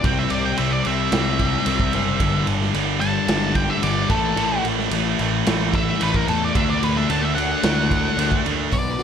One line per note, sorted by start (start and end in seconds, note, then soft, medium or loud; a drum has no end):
0.04 0.26 C2 medium
0.04 0.58 C3 medium
0.04 0.59 G3 medium
0.04 0.58 C4 medium
0.04 0.19 G5 medium
0.04 kick loud
0.04 ride medium
0.19 0.31 E5 medium
0.30 0.53 C2 medium
0.30 0.44 D5 medium
0.30 ride medium
0.45 0.58 G5 medium
0.57 0.81 C2 medium
0.57 0.85 C3 medium
0.57 0.86 G3 medium
0.57 0.86 C4 medium
0.57 0.72 E5 medium
0.57 ride medium
0.72 0.85 D5 medium
0.85 1.08 C2 medium
0.85 1.10 C3 medium
0.85 1.11 G3 medium
0.85 1.11 C4 loud
0.85 2.45 E5 medium
0.85 ride medium
1.12 1.56 C2 loud
1.12 1.65 C3 medium
1.12 1.65 G3 medium
1.12 1.65 C4 loud
1.12 snare loud
1.12 ride loud
1.39 kick medium
1.39 ride medium
1.66 1.89 C2 medium
1.66 1.92 C3 medium
1.66 1.93 G3 medium
1.66 1.93 C4 medium
1.66 ride medium
1.80 kick medium
1.93 2.16 F#1 medium
1.93 2.19 C3 medium
1.93 2.19 G3 medium
1.93 2.20 C4 medium
1.93 ride medium
2.20 2.43 G1 medium
2.20 2.73 G2 medium
2.20 2.74 D3 loud
2.20 2.74 G3 loud
2.20 kick loud
2.20 ride medium
2.47 2.70 G1 medium
2.47 ride medium
2.62 snare soft
2.74 3.19 G1 medium
2.74 3.01 G2 medium
2.74 3.01 D3 medium
2.74 3.02 G3 medium
2.74 ride medium
3.01 3.29 G2 medium
3.01 3.29 D3 medium
3.01 3.29 G3 medium
3.01 3.54 A5 loud
3.01 ride medium
3.28 3.73 G1 medium
3.28 3.82 G2 medium
3.28 3.82 D3 medium
3.28 3.83 G3 medium
3.28 snare loud
3.28 ride medium
3.55 3.70 G5 loud
3.55 kick medium
3.55 ride medium
3.70 3.83 E5 medium
3.82 4.05 G1 medium
3.82 4.09 G2 medium
3.82 4.09 D3 medium
3.82 4.09 G3 medium
3.82 4.10 D5 medium
3.82 ride medium
4.09 4.32 A1 medium
4.09 4.35 A2 loud
4.09 4.36 E3 medium
4.09 4.37 A3 loud
4.09 4.64 A4 loud
4.09 kick loud
4.09 ride medium
4.37 4.59 A1 medium
4.37 4.90 A2 loud
4.37 4.91 E3 medium
4.37 4.92 A3 loud
4.37 ride medium
4.64 4.86 A1 medium
4.64 ride medium
4.79 snare soft
4.91 5.14 A1 medium
4.91 5.18 A2 medium
4.91 5.19 E3 medium
4.91 5.20 A3 medium
4.91 ride medium
5.19 5.42 A1 medium
5.19 5.45 A2 medium
5.19 5.46 E3 medium
5.19 5.46 A3 medium
5.19 ride medium
5.46 5.91 A1 medium
5.46 5.99 A2 medium
5.46 6.00 E3 loud
5.46 6.00 A3 loud
5.46 snare loud
5.46 ride loud
5.74 6.01 E5 medium
5.74 kick medium
5.74 ride medium
6.01 6.23 A1 medium
6.01 6.27 A2 medium
6.01 6.27 E3 medium
6.01 6.28 A3 loud
6.01 6.16 B4 medium
6.01 ride medium
6.14 6.29 A#4 loud
6.14 kick medium
6.28 6.50 E2 medium
6.28 6.54 A2 medium
6.28 6.54 E3 medium
6.28 6.55 A3 medium
6.28 6.42 A4 medium
6.28 ride medium
6.44 6.56 D5 medium
6.55 6.77 D2 medium
6.55 7.08 D3 medium
6.55 7.09 A3 loud
6.55 7.09 D4 loud
6.55 6.69 E5 loud
6.55 kick loud
6.55 ride medium
6.70 6.84 D5 medium
6.83 7.04 D2 medium
6.83 6.97 B4 medium
6.83 ride medium
6.97 7.10 E5 loud
6.97 snare soft
7.10 7.54 D2 medium
7.10 7.36 D3 medium
7.10 7.37 A3 loud
7.10 7.37 D4 medium
7.10 7.23 A5 medium
7.10 ride medium
7.22 7.34 E5 medium
7.35 7.63 D3 medium
7.35 7.64 A3 medium
7.35 7.64 D4 medium
7.35 8.41 F#5 loud
7.35 ride medium
7.63 8.08 D2 loud
7.63 8.17 D3 medium
7.63 8.17 A3 loud
7.63 8.17 D4 medium
7.63 snare loud
7.63 ride loud
7.91 kick medium
7.91 ride medium
8.17 8.40 D2 medium
8.17 8.44 D3 medium
8.17 8.45 A3 medium
8.17 8.45 D4 medium
8.17 ride loud
8.32 kick medium
8.45 8.67 D2 medium
8.45 8.71 D3 medium
8.45 8.71 A3 medium
8.45 8.72 D4 medium
8.45 ride medium
8.72 8.95 B1 medium
8.72 9.03 B2 medium
8.72 9.03 F#3 medium
8.72 9.03 B3 medium
8.72 9.03 D5 medium
8.72 kick loud
8.72 open hi-hat medium
8.99 9.03 B1 medium
8.99 9.03 F#4 medium
8.99 open hi-hat soft